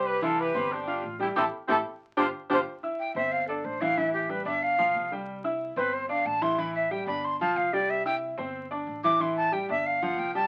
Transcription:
X:1
M:4/4
L:1/8
Q:1/4=184
K:C
V:1 name="Flute"
z8 | z8 | z2 g e f A c f | e G B e f3 z |
z3 B c f a c' | b e g b c' a f d | e g z4 z d' | c' a g e f ^f g a |]
V:2 name="Grand piano"
[G,Gg] [E,Ee]2 [Ccc']2 [Fff']2 [G,Gg] | [EGA] z [EGA] z2 [FGc] z [FGc] | z [Eee']2 [Ccc']2 [Ddd']2 [E,Ee] | [E,Ee]2 [G,Gg] [Ddd']2 [F,Ff]2 [G,Gg]- |
[G,Gg] [Eee']2 [Ccc']2 [Ddd']2 [E,Ee] | [E,Ee]2 [G,Gg] [Ddd']2 [F,Ff]2 [G,Gg]- | [G,Gg] [Eee']2 [Ccc']2 [Ddd']2 [E,Ee] | [E,Ee]2 [G,Gg] [Ddd']2 [F,Ff]2 [G,Gg] |]
V:3 name="Horn section"
[GB] [FA] [GB]2 [DG]2 z [EG] | [EGA] z [EGA] z2 [FGc] z [FGc] | z8 | z8 |
z8 | z8 | z8 | z8 |]
V:4 name="Baritone saxophone"
z8 | C z C z2 D z D | z8 | z8 |
z8 | z8 | z8 | z8 |]
V:5 name="Upright bass" clef=bass
C,,3 G,,,3 A,,,2 | A,,, z A,,, z2 G,,, z G,,, | z3 G,,,3 A,,,2- | A,,,3 G,,,2 B,,, C,,2- |
C,,3 G,,,3 A,,,2- | A,,,3 G,,,2 B,,, C,,2- | C,,3 G,,,3 A,,,2- | A,,,3 G,,,3 C,,2 |]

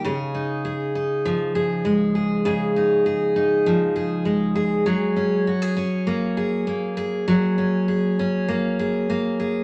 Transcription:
X:1
M:4/4
L:1/16
Q:1/4=100
K:Dblyd
V:1 name="Steel-string acoustic guitar"
[D,A]2 E2 A2 E2 F,2 A2 A,2 A2 | [D,A]2 E2 A2 E2 F,2 A2 A,2 A2 | [_G,A]2 D2 _G A D2 B,2 A2 B,2 A2 | [_G,A]2 D2 A2 D2 B,2 A2 B,2 A2 |]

